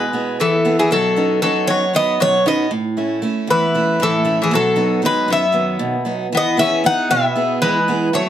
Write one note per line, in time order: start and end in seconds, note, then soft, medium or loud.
0.00 0.38 B2 medium
0.00 0.36 G#3 medium
0.00 0.36 B4 medium
0.13 0.55 B3 soft
0.13 0.55 E4 soft
0.13 0.55 G#4 soft
0.40 0.89 E3 medium
0.40 0.76 E3 medium
0.40 0.76 A4 medium
0.65 0.86 B3 soft
0.65 0.86 E4 soft
0.65 0.86 G#4 medium
0.79 0.91 E3 medium
0.79 0.91 G#4 medium
0.91 1.41 B2 medium
0.91 1.40 F#3 medium
0.91 1.39 A4 medium
1.16 1.41 B3 soft
1.16 1.41 C#4 soft
1.16 1.42 D#4 soft
1.42 1.67 F#3 medium
1.42 1.83 B3 soft
1.42 1.83 C#4 soft
1.42 1.84 D#4 medium
1.42 1.69 A4 medium
1.67 2.18 F#2 medium
1.67 1.93 F#3 medium
1.67 1.92 C#5 medium
1.93 2.35 B3 soft
1.93 2.18 B3 medium
1.93 2.35 C#4 soft
1.93 2.35 D#4 medium
1.93 2.19 D#5 loud
2.20 2.70 B2 medium
2.20 2.44 F#3 medium
2.20 2.45 C#5 loud
2.45 2.66 B3 soft
2.45 2.70 B3 medium
2.45 2.66 C#4 soft
2.45 2.66 D#4 soft
2.45 2.71 D#5 medium
2.71 3.21 A2 medium
2.97 3.21 A3 soft
2.97 3.21 C#4 soft
2.97 3.22 E4 medium
3.22 3.63 A3 medium
3.22 3.64 C#4 soft
3.22 3.64 E4 medium
3.47 3.98 E2 medium
3.47 3.97 E3 medium
3.47 4.02 B4 medium
3.75 4.16 A3 soft
3.75 4.16 C#4 soft
3.75 4.16 E4 soft
4.00 4.50 A2 medium
4.00 4.37 E3 medium
4.00 4.41 A4 medium
4.25 4.46 A3 soft
4.25 4.46 C#4 soft
4.25 4.46 E4 medium
4.42 4.52 E3 medium
4.42 4.54 G#4 medium
4.51 5.01 B2 medium
4.51 5.00 F#3 medium
4.55 5.01 A4 medium
4.76 5.01 F#3 soft
4.76 5.01 B3 soft
4.76 5.01 D#4 medium
5.02 5.44 F#3 soft
5.02 5.28 G#3 medium
5.02 5.44 B3 soft
5.02 5.44 D#4 medium
5.06 5.31 B4 medium
5.28 5.78 F#2 medium
5.28 6.03 B3 medium
5.32 6.04 E5 medium
5.52 5.95 D#3 soft
5.52 5.94 F#3 soft
5.52 5.95 B3 soft
5.79 6.30 B2 medium
6.05 6.26 F#3 soft
6.05 6.26 B3 soft
6.05 6.27 D#4 medium
6.32 6.82 E3 medium
6.32 6.57 B3 medium
6.37 6.59 D#5 medium
6.57 6.83 B3 soft
6.57 6.83 C#4 medium
6.57 6.84 E4 soft
6.57 6.84 G#4 medium
6.57 6.85 E5 medium
6.84 7.25 B3 medium
6.84 7.09 D#4 medium
6.84 7.26 E4 soft
6.84 7.25 G#4 medium
6.84 7.09 F#5 loud
7.11 7.60 B2 medium
7.11 7.58 B3 medium
7.11 7.58 E5 medium
7.36 7.77 B3 soft
7.36 7.77 E4 soft
7.36 7.77 G#4 soft
7.62 8.11 E3 medium
7.62 8.10 G#3 medium
7.62 8.14 B4 medium
7.88 8.08 B3 medium
7.88 8.08 E4 soft
7.88 8.09 G#4 soft
8.13 8.29 F#3 medium
8.13 8.29 A3 medium
8.13 8.29 C#5 medium